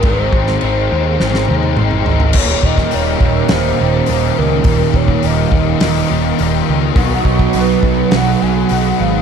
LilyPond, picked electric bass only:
\new Staff \with { instrumentName = "Picked electric bass" } { \clef bass \time 4/4 \key aes \major \tempo 4 = 104 aes,,8 aes,,8 aes,,8 ees,8 aes,,8 ees,8 aes,,8 aes,,8 | ees,,8 ees,,8 ees,,8 ees,,8 ees,,8 ees,,8 ees,,8 des,8 | ees,,8 ees,,8 ees,,8 ees,,8 ees,,8 ees,,8 ees,,8 des,8 | b,,8 b,,8 b,,8 b,,8 b,,8 b,,8 b,,8 gis,,8 | }